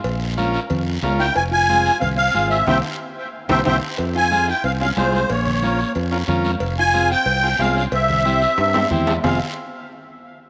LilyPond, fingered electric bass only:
\new Staff \with { instrumentName = "Fingered electric bass" } { \clef bass \time 4/4 \key f \minor \tempo 4 = 183 bes,,2 f,4 des,4 | f,,2 c,4 aes,,4 | c,8 r2 c,8 c,8 r8 | f,2 c,4 c,4 |
bes,,2 f,4 f,4 | f,,2 c,4 c,4 | c,2 g,4 e,4 | f,,8 r2. r8 | }